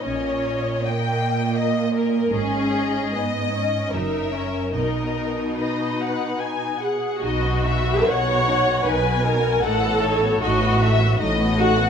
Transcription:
X:1
M:3/4
L:1/16
Q:1/4=76
K:B
V:1 name="Violin section"
d12 | d8 e4 | d4 d2 f2 g2 f2 | d2 e2 f4 g4 |
f2 c2 d2 e2 d2 f2 |]
V:2 name="Viola section"
C4 A,8 | C4 B,2 C2 D2 C2 | D8- D2 G2 | F4 c4 B2 A2 |
=A4 F4 z2 F2 |]
V:3 name="Violin section"
c4 =g4 d2 A2 | G4 d4 A4 | A4 B6 z2 | D [B,F] D [B,F] D [B,F] D [B,F] D [B,F] D [B,F] |
[=A,D] [B,F] [A,D] [B,F] [A,D] [B,F] [A,D] [B,F] [A,D] [B,F] [A,D] [B,F] |]
V:4 name="Cello section" clef=bass
A,,12 | G,,8 F,,4 | B,,8- B,,3 z | B,,4 B,,4 B,,4 |
=A,,4 A,,4 A,,4 |]
V:5 name="Double bass section" clef=bass
A,,,4 z8 | G,,,4 z4 F,,,4 | B,,,4 z8 | B,,,4 B,,,4 B,,,4 |
=A,,,4 A,,,4 A,,,4 |]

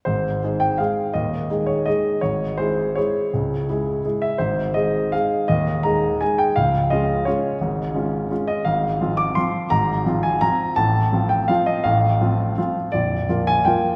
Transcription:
X:1
M:3/4
L:1/8
Q:1/4=168
K:Ab
V:1 name="Grand piano"
c3 g f2 | e3 d e2 | d2 c2 d2- | d4- d _f |
c2 e2 f2 | e2 b2 a g | f2 e2 d2- | d4 z e |
[K:Fdor] f3 d' c'2 | b3 a b2 | =a3 g f e | f4- f z |
d3 a g2 |]
V:2 name="Grand piano"
[A,,,A,,]2 [A,EA]2 [A,EA]2 | [E,,,E,,]2 [A,EA]2 [A,EA]2 | [A,,,A,,]2 [A,_FA]2 [A,FA]2 | [D,,D,]2 [A,_FA]2 [A,FA]2 |
[A,,,A,,]2 [A,EA]2 [A,EA]2 | [E,,,E,,]2 [A,EA]2 [A,EA]2 | [D,,,D,,]2 [A,DF]2 [A,DF]2 | [A,,,A,,]2 [A,DF]2 [A,DF]2 |
[K:Fdor] [A,,,A,,]2 [F,CF]2 [F,CF]2 | [A,,,A,,]2 [F,CF]2 [F,CF]2 | [=A,,,=A,,]2 [F,CF]2 [F,CF]2 | [=A,,,=A,,]2 [F,CF]2 [F,CF]2 |
[B,,,,B,,,]2 [F,B,F]2 [F,B,F]2 |]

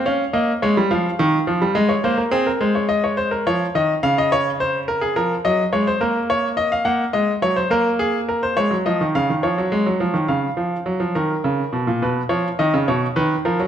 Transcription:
X:1
M:12/8
L:1/16
Q:3/8=70
K:Db
V:1 name="Grand piano"
f2 e2 d2 f6 e d c B A B c d e d c B | d2 e2 f e d2 c2 B A B2 e2 d c B2 d2 e f | g2 e2 d c B2 A2 B c d2 e2 f2 d6 | [K:A#phr] e6 A6 B2 c2 d2 c2 B2 A2 |]
V:2 name="Grand piano" clef=bass
D2 B,2 A, =G, F,2 E,2 F, G, A,2 B,2 C2 A,6 | F,2 E,2 D,8 F,2 G,2 A,2 B,6 | B,2 A,2 G,2 B,6 A, G, F, E, D, E, F, G, A, G, F, E, | [K:A#phr] C,2 E,2 F, E, D,2 C,2 B,, A,, B,,2 E,2 D, C, B,,2 D,2 E, F, |]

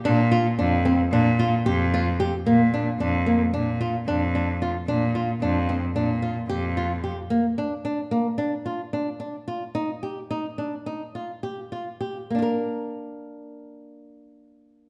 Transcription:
X:1
M:9/8
L:1/8
Q:3/8=74
K:Bb
V:1 name="Nylon-string guitar"
D F D C D F G F G | B, D D B, D F D D F | D F D C D F G F G | B, D D B, D F D D F |
E G E D E F G F G | [B,DFB]8- [B,DFB] |]
V:2 name="Cello" clef=bass
B,,2 F,,2 B,,2 F,,3 | B,,2 F,,2 B,,2 F,,3 | B,,2 F,,2 B,,2 F,,3 | z8 z |
z8 z | z8 z |]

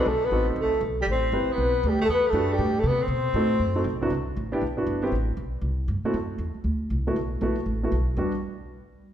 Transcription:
X:1
M:4/4
L:1/8
Q:"Swing" 1/4=237
K:Em
V:1 name="Flugelhorn"
A B2 z A2 z G | c3 B3 G A | B A2 G2 A B c- | c6- c z |
z8 | z8 | z8 | z8 |
z8 |]
V:2 name="Grand piano"
z2 [C^DFA]3 z3 | z2 [CEGB]3 z3 | z2 [DFGB]2 z4 | z2 [C^DFA] z2 [CDFA] z [C,B,=DEF] |
z3 [B,DEG] z [B,DEF]2 [B,CEG] | z6 z [A,CEF] | z6 z [A,B,EF] | z2 [A,B,EF] z2 [A,B,EF] z2 |
[G,B,DF] z6 z |]
V:3 name="Tenor saxophone"
A, B,2 z A,2 z G, | C3 B,3 G, A, | B, A,2 G,2 A, B, C- | C6- C z |
z8 | z8 | z8 | z8 |
z8 |]
V:4 name="Upright bass" clef=bass
B,,,2 A,,,2 C,,2 B,,,2 | A,,,2 G,,, z B,,,2 D,,2 | E,,2 F,,2 A,,2 C,2 | B,,2 A,,2 F,,2 B,,,2 |
C,,2 A,,,2 B,,,2 G,,,2 | A,,,2 B,,,2 C,,2 G,, z | F,,2 E,, z D,,2 C,,2 | B,,,2 ^A,,,2 =A,,,2 B,,,2 |
E,, z6 z |]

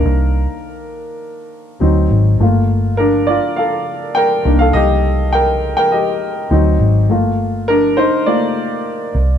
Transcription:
X:1
M:4/4
L:1/16
Q:1/4=102
K:Gm
V:1 name="Grand piano"
B8- B2 z6 | z4 [DB]2 [Fd]2 [Af]4 [Bg]3 [Af] | [Ge]4 [Bg]3 [Bg] [Ge]6 z2 | z4 [DB]2 [Ec]2 d8 |]
V:2 name="Grand piano"
[E,B,D]4 z8 [^F,CE]4 | [A,B,F]12- [A,B,F]2 [E,B,D]2 | z12 [^F,CE]2 z2 | [A,B,F]8 [A,B,F]2 z6 |]
V:3 name="Fingered electric bass" clef=bass
C,,3 z8 z D,,2 _A,,,2 | G,,,6- G,,, z6 z C,,2 | C,,6- C,, z4 z D,,2 _A,,,2 | G,,,6- G,,, z6 z C,,2 |]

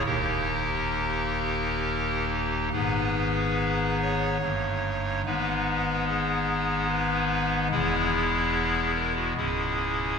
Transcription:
X:1
M:3/4
L:1/16
Q:1/4=72
K:G#m
V:1 name="Pipe organ"
A8- A2 z2 | B6 c6 | B4 G4 B4 | G6 A F G4 |]
V:2 name="Pipe organ" clef=bass
[D,,,D,,A,D=G]12 | [G,,,G,,B,DG]8 [=G,,,=G,,A,D]4 | [G,,,G,,G,B,D]12 | [E,,,E,,G,B,E]8 [C,,,C,,G,CE]4 |]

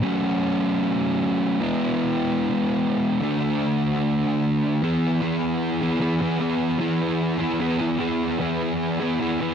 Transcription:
X:1
M:4/4
L:1/8
Q:1/4=150
K:Emix
V:1 name="Distorted electric guitar"
[F,A,CF]8 | [E,G,B,E]8 | [D,A,DF]8 | [E,B,EG]2 [E,B,EG]3 [B,EG] [E,B,EG] [B,EG] |
[E,B,EG]2 [E,B,EG]3 [B,EG] [E,B,EG] [B,EG] | [E,B,EG]2 [E,B,EG]3 [B,EG] [E,B,EG] [B,EG] |]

